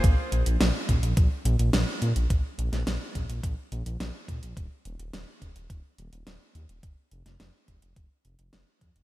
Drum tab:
HH |x-xxx-xxx-xxx-xx|x-xxx-xxx-xxx-xx|x-xxx-xxx-xxx-xx|x-xxx-xxx-xxx-xx|
SD |----o-------o---|---oo-------o---|----o-------o---|---oo-------o---|
BD |o-----o-o-------|o-----o-o-----o-|o-----o-o-------|o-----o-o-----o-|